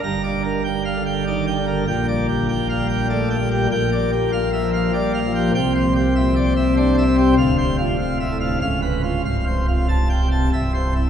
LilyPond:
<<
  \new Staff \with { instrumentName = "Pipe organ" } { \time 3/4 \key g \minor \tempo 4 = 98 << { bes''8 r2 r8 | g''8 r2 r8 | \key c \mixolydian g''8 r2 r8 | g''8 r2 r8 |
f''8 r4. f''8 r8 | r4 a''8 r8 e''8 r8 | } \\ { \tuplet 3/2 { r8 d''8 bes'8 g''8 f''8 g''8 d''8 g''8 bes'8 } | \tuplet 3/2 { r8 d''8 g'8 g''8 f''8 g''8 d''8 g''8 g'8 } | \tuplet 3/2 { r8 d''8 g'8 f''8 e''8 f''8 d''8 f''8 g'8 } | \tuplet 3/2 { r8 c''8 g'8 e''8 d''8 e''8 c''8 e''8 g'8 } |
\tuplet 3/2 { r8 c''8 f'8 f''8 e''8 f''8 r8 ces''8 f'8 } | \tuplet 3/2 { f''8 c''8 f'8 r8 g''8 a''8 r8 c''8 e'8 } | } >> }
  \new Staff \with { instrumentName = "Pipe organ" } { \clef bass \time 3/4 \key g \minor << { g,4. d8 ees8 d8 | bes,4. g8 a8 g8 | \key c \mixolydian bes,4. f8 g8 f8 | c4. c'8 d'8 c'8 |
d,4. a,8 des,4 | c,4. c8 c,4 | } \\ { g,,2. | bes,,2. | bes,,2. | c,2. |
d,,2 des,,4 | c,,2 c,,4 | } >> }
>>